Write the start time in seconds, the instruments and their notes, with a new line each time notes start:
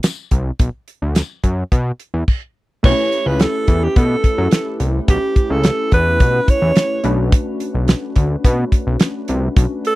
0.03 snare, closed hi-hat, tambourine
0.31 analog synth bass C2, kick, closed hi-hat
0.59 analog synth bass B1, kick, closed hi-hat
0.88 closed hi-hat
1.02 analog synth bass D2
1.15 snare, closed hi-hat, tambourine
1.44 analog synth bass F#2, kick, closed hi-hat
1.72 analog synth bass B2, kick, closed hi-hat
2.00 closed hi-hat
2.14 analog synth bass E2
2.28 kick, crash
2.83 analog synth bass B1, analog polysynth A3 B3 E4 G4 B4, alto saxophone C#5, kick, crash
2.90 analog polysynth C#4
3.12 closed hi-hat
3.26 analog synth bass C#2, alto saxophone B4
3.40 alto saxophone A4, snare, closed hi-hat
3.68 analog synth bass E2, kick, closed hi-hat
3.84 alto saxophone G4
3.96 analog synth bass B2, alto saxophone A4, kick, closed hi-hat
4.24 kick, closed hi-hat
4.38 analog synth bass F#2
4.51 snare, closed hi-hat
4.80 analog synth bass C2, closed hi-hat
5.08 analog synth bass B1, alto saxophone G4, kick, closed hi-hat
5.36 kick, closed hi-hat
5.50 analog synth bass C#2, alto saxophone A4
5.64 snare, closed hi-hat
5.92 analog synth bass E2, alto saxophone B4, kick, closed hi-hat
6.20 analog synth bass B2, kick, closed hi-hat
6.48 alto saxophone C#5, kick, closed hi-hat
6.62 analog synth bass E2
6.76 snare, closed hi-hat
7.04 analog synth bass B1, analog polysynth A3 C#4 D4 F#4 B4, closed hi-hat
7.32 kick, closed hi-hat
7.60 closed hi-hat
7.75 analog synth bass B1
7.88 snare, closed hi-hat
8.16 analog synth bass D2, kick, closed hi-hat
8.44 analog synth bass B2, kick, closed hi-hat
8.72 kick, closed hi-hat
8.87 analog synth bass B1
9.00 snare, closed hi-hat
9.28 analog synth bass C2, closed hi-hat
9.56 analog synth bass B1, kick, closed hi-hat
9.85 alto saxophone A4, closed hi-hat